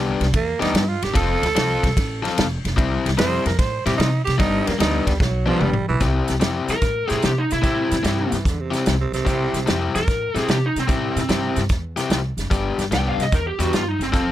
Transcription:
Already playing: upright bass C2, overdriven electric guitar G3 B3 D4 G4
0.20 upright bass C2, snare, ride
0.34 upright bass E2, tenor saxophone A#3, kick, ride
0.60 upright bass E2, overdriven electric guitar G3 B3 D4 G4, tenor saxophone D#4, snare, ride
0.74 upright bass G2, snare, ride
0.89 tenor saxophone F4
1.02 upright bass G1, tenor saxophone G4, snare, ride
1.14 upright bass F1, overdriven electric guitar F3 C4 F4 A4, tenor saxophone A4, kick, snare, ride
1.42 upright bass D2, snare, ride
1.55 upright bass C2, overdriven electric guitar F3 C4 F4 A4, snare, ride
1.83 upright bass C2, kick, snare, ride
1.97 upright bass A1, kick, snare, ride
2.23 overdriven electric guitar F3 C4 F4 A4, snare, ride
2.38 upright bass F1, snare, ride
2.65 upright bass F1, snare, ride
2.77 upright bass C2, overdriven electric guitar C3 G3 C4 E4, kick, ride
3.06 upright bass C2, snare, ride
3.17 upright bass F2, overdriven electric guitar C3 G3 C4 E4, tenor saxophone C5, snare, ride
3.46 upright bass F2, tenor saxophone A#4, snare, ride
3.59 upright bass A2, tenor saxophone C5, kick, snare, ride
3.86 upright bass A2, overdriven electric guitar C3 G3 C4 E4, tenor saxophone G4, snare, ride
3.97 upright bass C3, tenor saxophone D#4, snare, ride
4.24 upright bass C3, tenor saxophone G4, ride
4.28 snare
4.38 upright bass G1, overdriven electric guitar G2 G3 B3 D4, tenor saxophone D#4, kick, snare, ride
4.67 upright bass F2, tenor saxophone A#3, snare, ride
4.78 upright bass D2, overdriven electric guitar G2 G3 B3 D4, tenor saxophone D#4, snare, ride
5.07 upright bass D2, tenor saxophone G3, kick, snare, ride
5.20 upright bass B1, tenor saxophone F#3, kick, snare
5.46 overdriven electric guitar G2 G3 B3 D4, tenor saxophone F3, high tom
5.61 upright bass G1, tenor saxophone G3, mid tom
5.73 mid tom
5.88 upright bass B1, tenor saxophone E3
6.00 upright bass C2, overdriven electric guitar C3 C4 E4 G4, kick, snare, closed hi-hat
6.28 upright bass C2, snare, closed hi-hat
6.40 upright bass F2, overdriven electric guitar C3 C4 E4 G4, snare, closed hi-hat
6.68 upright bass F2, lead electric guitar A#4, snare, closed hi-hat
6.81 upright bass A2, kick, snare, closed hi-hat
7.08 upright bass A2, overdriven electric guitar C3 C4 E4 G4, lead electric guitar G#4, snare, closed hi-hat
7.22 upright bass C3, lead electric guitar G4, snare, closed hi-hat
7.38 lead electric guitar D#4
7.51 upright bass C3, lead electric guitar E4, snare, closed hi-hat
7.62 upright bass A2, overdriven electric guitar C3 C4 E4 G4, kick, snare, closed hi-hat
7.91 upright bass A2, snare, closed hi-hat
8.03 upright bass G2, overdriven electric guitar C3 C4 E4 G4, snare, closed hi-hat
8.32 upright bass G2, tenor saxophone E3, snare, closed hi-hat
8.45 upright bass E2, tenor saxophone D3, kick, snare, closed hi-hat
8.60 tenor saxophone C3
8.71 overdriven electric guitar C3 C4 E4 G4, snare, closed hi-hat
8.86 upright bass C2, snare, closed hi-hat
9.00 tenor saxophone C3
9.12 upright bass C2, tenor saxophone C3, snare, closed hi-hat
9.25 upright bass C2, overdriven electric guitar C3 C4 E4 G4, kick, snare, closed hi-hat
9.54 upright bass C2, snare, closed hi-hat
9.66 upright bass F2, overdriven electric guitar C3 C4 E4 G4, snare, closed hi-hat
9.95 upright bass F2, lead electric guitar A#4, snare, closed hi-hat
10.08 upright bass A2, kick, snare, closed hi-hat
10.35 upright bass A2, overdriven electric guitar C3 C4 E4 G4, snare, closed hi-hat
10.48 upright bass C3, lead electric guitar G4, snare, closed hi-hat
10.66 lead electric guitar D#4
10.76 upright bass C3, lead electric guitar C4, snare, closed hi-hat
10.88 upright bass A2, overdriven electric guitar C3 C4 E4 G4, kick, snare, closed hi-hat
11.16 upright bass A2, snare, closed hi-hat
11.29 upright bass G2, overdriven electric guitar C3 C4 E4 G4, snare, closed hi-hat
11.56 upright bass G2, snare, closed hi-hat
11.69 upright bass E2, kick, snare, closed hi-hat
11.97 overdriven electric guitar C3 C4 E4 G4, snare, closed hi-hat
12.10 upright bass C2, snare, closed hi-hat
12.37 upright bass F#1, snare, closed hi-hat
12.51 upright bass G1, overdriven electric guitar G3 B3 D4 G4, kick, snare, closed hi-hat
12.78 upright bass G1, snare, closed hi-hat
12.91 upright bass C2, overdriven electric guitar G3 B3 D4 G4, lead electric guitar G5, snare, closed hi-hat
13.09 lead electric guitar F5
13.18 upright bass C2, snare, closed hi-hat
13.22 lead electric guitar D#5
13.32 upright bass E2, lead electric guitar A#4, kick, snare, closed hi-hat
13.47 lead electric guitar G4
13.59 upright bass E2, overdriven electric guitar G3 B3 D4 G4, lead electric guitar F#4, snare, closed hi-hat
13.73 upright bass G2, lead electric guitar F4, snare, closed hi-hat
13.88 lead electric guitar D#4
13.99 upright bass G1, lead electric guitar C4, snare, closed hi-hat
14.13 upright bass F1, overdriven electric guitar F3 C4 F4 A4, lead electric guitar C4, kick, snare, closed hi-hat

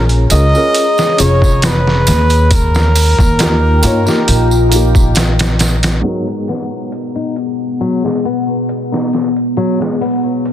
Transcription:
Already playing: upright bass A#1, felt piano C#4 F4 G#4 A#4, ambient pad G#4 C#5 A#5
0.09 closed hi-hat
0.30 upright bass C#2, felt piano C#4 F4 G#4 A#4, muted trumpet D#5, closed hi-hat, tambourine
0.54 felt piano C#4 F4 G#4 A#4, tambourine
0.74 closed hi-hat, tambourine
0.98 snare, tambourine
1.16 upright bass F1, felt piano C#4 F4, closed hi-hat, tambourine
1.20 felt piano G#4 C#5, muted trumpet C#5
1.42 kick, tambourine
1.62 muted trumpet B4, snare, closed hi-hat, tambourine
1.87 snare
2.07 upright bass D#2, snare, closed hi-hat, tambourine
2.30 closed hi-hat, tambourine
2.51 ambient pad F4 D#5 G5, muted trumpet A#4, kick, closed hi-hat, tambourine
2.75 snare, tambourine
2.95 open hi-hat, tambourine
3.19 upright bass D#2, kick, tambourine
3.38 felt piano A#3 D#4 F4 G4, snare, closed hi-hat, tambourine
3.82 upright bass G2, felt piano A#3 D#4 F4 C#5, closed hi-hat, tambourine
4.05 felt piano A#3 D#4 F4 G4, snare, tambourine
4.28 upright bass A#1, closed hi-hat, tambourine
4.51 tambourine
4.69 felt piano A#3 D#4, closed hi-hat, tambourine
4.73 felt piano F4 G4
4.95 kick, tambourine
5.15 snare, closed hi-hat, tambourine
5.39 snare, closed hi-hat, tambourine
5.59 snare, closed hi-hat, tambourine
5.83 snare, closed hi-hat, tambourine
6.01 felt piano G#2 B3 D#4, nylon-string guitar F#3, ambient pad B3 G#4 F#5, closed hi-hat
6.06 felt piano F#4 A#4
6.27 nylon-string guitar G#3, closed hi-hat
6.48 nylon-string guitar B3, snare, closed hi-hat
6.92 closed hi-hat
7.16 nylon-string guitar D#4, closed hi-hat
7.36 closed hi-hat
7.81 nylon-string guitar F#3, closed hi-hat
8.04 nylon-string guitar G#3, snare
8.25 nylon-string guitar B3, closed hi-hat
8.69 closed hi-hat
8.92 nylon-string guitar D#4, snare
9.13 snare, closed hi-hat
9.36 closed hi-hat
9.57 nylon-string guitar F#3, ambient pad F5, closed hi-hat
9.80 nylon-string guitar G#3, snare
10.01 nylon-string guitar B3, open hi-hat
10.45 closed hi-hat

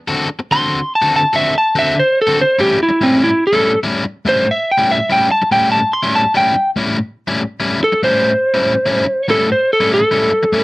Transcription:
0.08 overdriven electric guitar D3 C4 F#4 A4
0.28 muted overdriven electric guitar stroke
0.39 muted overdriven electric guitar stroke
0.51 overdriven electric guitar D3 C4 F#4 A4, lead electric guitar C6
0.95 lead electric guitar A5
1.02 overdriven electric guitar D3 C4 F#4 A4
1.16 lead electric guitar A5
1.33 overdriven electric guitar D3 C4 F#4 A4, lead electric guitar E5
1.54 lead electric guitar A5, muted overdriven electric guitar stroke
1.75 overdriven electric guitar D3 C4 F#4 A4, lead electric guitar E5
1.95 muted overdriven electric guitar stroke
1.99 lead electric guitar C5
2.22 lead electric guitar A4
2.27 overdriven electric guitar D3 C4 F#4 A4
2.41 lead electric guitar C5
2.59 overdriven electric guitar A2 G3 C#4 E4, lead electric guitar G4
2.78 muted overdriven electric guitar stroke
2.83 lead electric guitar E4
2.89 muted overdriven electric guitar stroke
3.01 overdriven electric guitar A2 G3 C#4 E4, lead electric guitar C4
3.24 lead electric guitar E4
3.47 lead electric guitar A4
3.53 overdriven electric guitar A2 G3 C#4 E4
3.83 overdriven electric guitar A2 G3 C#4 E4
4.05 muted overdriven electric guitar stroke
4.25 overdriven electric guitar A2 G3 C#4 E4, lead electric guitar C5
4.46 muted overdriven electric guitar stroke
4.51 lead electric guitar E5
4.72 lead electric guitar G5
4.78 overdriven electric guitar A2 G3 C#4 E4
4.91 lead electric guitar E5
5.10 overdriven electric guitar A2 G3 C#4 E4, lead electric guitar G5
5.30 lead electric guitar A5, muted overdriven electric guitar stroke
5.42 muted overdriven electric guitar stroke
5.51 overdriven electric guitar A2 G3 C#4 E4, lead electric guitar G5
5.72 lead electric guitar A5
5.93 lead electric guitar C6
6.03 overdriven electric guitar A2 G3 C#4 E4
6.15 lead electric guitar A5
6.35 overdriven electric guitar A2 G3 C#4 E4, lead electric guitar G5
6.54 muted overdriven electric guitar stroke
6.76 overdriven electric guitar A2 G3 C#4 E4
6.98 muted overdriven electric guitar stroke
7.28 overdriven electric guitar A2 G3 C#4 E4
7.60 overdriven electric guitar A2 G3 C#4 E4
7.80 lead electric guitar A4, muted overdriven electric guitar stroke
7.92 muted overdriven electric guitar stroke
8.03 overdriven electric guitar A2 G3 C#4 E4, lead electric guitar C5
8.54 overdriven electric guitar A2 G3 C#4 E4
8.86 overdriven electric guitar A2 G3 C#4 E4
9.05 muted overdriven electric guitar stroke
9.28 overdriven electric guitar A2 G3 C#4 E4, lead electric guitar A4
9.49 lead electric guitar C5, muted overdriven electric guitar stroke
9.73 lead electric guitar A4
9.80 overdriven electric guitar A2 G3 C#4 E4
9.94 lead electric guitar A4
10.11 overdriven electric guitar A2 G3 C#4 E4
10.31 muted overdriven electric guitar stroke
10.43 muted overdriven electric guitar stroke
10.53 overdriven electric guitar A2 G3 C#4 E4

